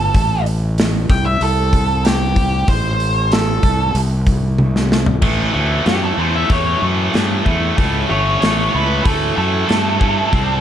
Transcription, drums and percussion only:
0.14 kick, open hi-hat
0.46 open hi-hat
0.78 snare, open hi-hat
1.10 kick, open hi-hat
1.41 open hi-hat
1.73 kick, open hi-hat
2.05 snare, open hi-hat
2.36 kick, open hi-hat
2.68 kick, open hi-hat
3.00 open hi-hat
3.32 snare, open hi-hat
3.63 kick, open hi-hat
3.95 open hi-hat
4.27 kick, open hi-hat
4.58 high tom
4.76 snare
4.92 snare
5.06 floor tom
5.22 kick, crash
5.86 snare, open hi-hat
6.50 kick, open hi-hat
7.14 snare, open hi-hat
7.46 kick
7.78 kick, open hi-hat
8.42 snare, open hi-hat
9.05 kick, open hi-hat
9.69 snare, open hi-hat
10.01 kick
10.33 kick, open hi-hat

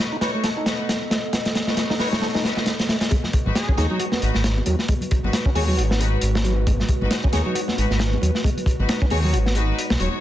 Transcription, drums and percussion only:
0.00 snare
0.21 snare, closed hi-hat
0.44 snare, closed hi-hat
0.66 snare, closed hi-hat
0.89 snare, closed hi-hat
1.11 snare, closed hi-hat
1.33 snare, closed hi-hat
1.45 snare, closed hi-hat
1.55 snare, closed hi-hat
1.67 snare
1.77 snare, closed hi-hat
1.90 snare
1.99 snare, open hi-hat
2.13 snare
2.22 snare
2.35 snare
2.45 snare, closed hi-hat
2.57 snare
2.66 snare, closed hi-hat
2.79 snare, closed hi-hat
2.89 snare, closed hi-hat
3.01 snare, closed hi-hat
3.11 kick, closed hi-hat, high bongo, high conga
3.24 snare, low conga
3.33 kick, closed hi-hat, high bongo
3.46 high conga, low conga
3.55 snare, closed hi-hat
3.69 kick
3.78 snare, closed hi-hat, high conga
3.90 low conga
4.00 closed hi-hat
4.12 snare, high conga
4.22 closed hi-hat
4.35 snare
4.44 snare, closed hi-hat
4.58 high conga
4.66 closed hi-hat, high bongo
4.79 snare
4.88 kick, closed hi-hat, high bongo, high conga
5.01 closed hi-hat, low conga
5.11 kick, closed hi-hat, high bongo
5.24 high conga, low conga
5.33 snare, closed hi-hat
5.45 kick
5.56 open hi-hat, high conga
5.69 low conga
5.79 closed hi-hat
5.91 snare, high conga
6.01 closed hi-hat, high bongo
6.21 closed hi-hat
6.35 snare, high conga
6.45 closed hi-hat
6.67 kick, closed hi-hat, high bongo, high conga
6.80 snare, low conga
6.88 kick, closed hi-hat, high bongo
7.01 high conga, low conga
7.11 snare, closed hi-hat
7.24 kick
7.33 snare, closed hi-hat, high conga
7.46 low conga
7.55 closed hi-hat
7.68 snare, high conga
7.78 closed hi-hat
7.91 snare
8.00 snare, closed hi-hat
8.13 high conga
8.22 closed hi-hat, high bongo
8.35 snare
8.44 kick, closed hi-hat, high bongo, high conga
8.58 closed hi-hat, low conga
8.66 kick, closed hi-hat, high bongo
8.79 high conga, low conga
8.89 snare, closed hi-hat
9.02 kick
9.10 open hi-hat, high conga
9.24 low conga
9.34 closed hi-hat
9.46 snare, high conga
9.55 closed hi-hat, high bongo
9.79 closed hi-hat
9.90 snare, high conga
10.00 closed hi-hat

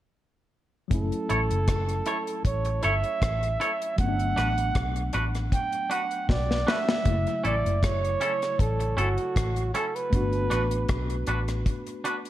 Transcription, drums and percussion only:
0.91 kick, closed hi-hat
1.12 closed hi-hat
1.30 closed hi-hat
1.51 closed hi-hat
1.68 kick, cross-stick, closed hi-hat
1.89 closed hi-hat
2.06 closed hi-hat
2.27 closed hi-hat
2.45 kick, closed hi-hat
2.65 closed hi-hat
2.83 closed hi-hat
3.04 closed hi-hat
3.22 kick, cross-stick, closed hi-hat
3.43 closed hi-hat
3.61 closed hi-hat
3.82 closed hi-hat
3.98 kick, closed hi-hat
4.19 closed hi-hat
4.37 cross-stick, closed hi-hat
4.58 closed hi-hat
4.75 kick, cross-stick, closed hi-hat
4.96 closed hi-hat
5.13 closed hi-hat
5.35 cross-stick, closed hi-hat
5.52 kick, closed hi-hat
5.72 closed hi-hat
5.91 closed hi-hat
6.11 closed hi-hat
6.29 kick, snare
6.51 snare
6.68 snare
6.89 snare
7.05 kick, closed hi-hat
7.27 closed hi-hat
7.45 closed hi-hat
7.66 closed hi-hat
7.83 kick, cross-stick, closed hi-hat
8.05 closed hi-hat
8.21 closed hi-hat
8.42 cross-stick, closed hi-hat
8.59 kick, closed hi-hat
8.80 closed hi-hat
8.98 closed hi-hat
9.18 closed hi-hat
9.36 kick, cross-stick, closed hi-hat
9.56 closed hi-hat
9.75 closed hi-hat
9.96 closed hi-hat
10.13 kick, closed hi-hat
10.33 closed hi-hat
10.51 cross-stick, closed hi-hat
10.71 closed hi-hat
10.89 kick, cross-stick, closed hi-hat
11.10 closed hi-hat
11.27 closed hi-hat
11.48 cross-stick, closed hi-hat
11.66 kick, closed hi-hat
11.87 closed hi-hat
12.05 closed hi-hat
12.25 closed hi-hat

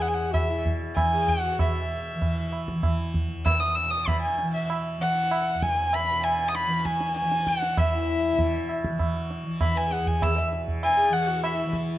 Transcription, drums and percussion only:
0.34 tabla na, tabla ge
0.66 tabla ge
0.97 tabla na, tabla ge
1.28 tabla ge
1.59 tabla na, tabla ge
2.22 tabla tin, tabla ge
2.52 tabla na
2.68 tabla ke
2.83 tabla na, tabla ge
3.14 tabla ge
3.46 tabla na, tabla ge
4.08 tabla na, tabla ge
4.39 tabla te
4.70 tabla na
5.31 tabla na
5.63 tabla ke
5.93 tabla na
6.24 tabla na
6.55 tabla te
6.70 tabla te
6.85 tabla ke
7.01 tabla te
7.16 tabla te
7.32 tabla te
7.47 tabla ke
7.63 tabla te
7.77 tabla na, tabla ge
8.39 tabla tin, tabla ge
8.69 tabla na
8.84 tabla ke
8.99 tabla na, tabla ge
9.30 tabla te
9.61 tabla na, tabla ge
9.91 tabla te
10.07 tabla ge
10.22 tabla na, tabla ge
10.53 tabla te
10.68 tabla ge
10.83 tabla na
11.44 tabla na
11.73 tabla ke

